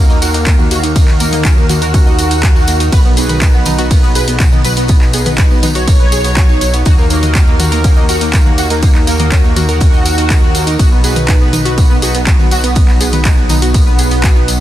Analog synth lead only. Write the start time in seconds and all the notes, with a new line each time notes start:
0.10 A#3
0.22 F#4
0.34 A#3
0.46 A#3
0.59 A#3
0.71 F#4
0.83 A#3
0.96 A#3
1.20 A#3
1.33 A#3
1.45 C#4
1.57 A#3
1.70 A#3
1.82 F#4
2.92 B4
3.05 B3
3.17 B3
3.42 B3
3.54 B3
3.78 B3
3.91 B3
4.03 B3
4.15 B4
4.28 B3
4.40 B3
4.52 B3
4.65 B4
4.77 B3
4.89 B3
5.14 B3
5.26 B3
5.38 B4
5.51 B3
5.63 B3
5.75 C#5
6.86 F#4
6.98 A#3
7.10 A#3
7.35 A#3
7.47 A#3
7.72 A#3
7.84 A#3
7.97 A#3
8.09 F#4
8.21 A#3
8.33 A#3
8.46 A#3
8.58 F#4
8.70 A#3
8.83 A#3
9.07 A#3
9.19 A#3
9.32 C#4
9.44 A#3
9.56 A#3
9.69 F#4
10.79 F#4
10.92 B3
11.04 B3
11.29 B3
11.41 B3
11.65 B3
11.78 B3
11.90 B3
12.02 F#4
12.15 B3
12.27 B3
12.39 B3
12.52 F#4
12.64 B3
12.76 B3
13.01 B3
13.13 B3
13.25 B3
13.37 B3
13.50 B3
13.62 B3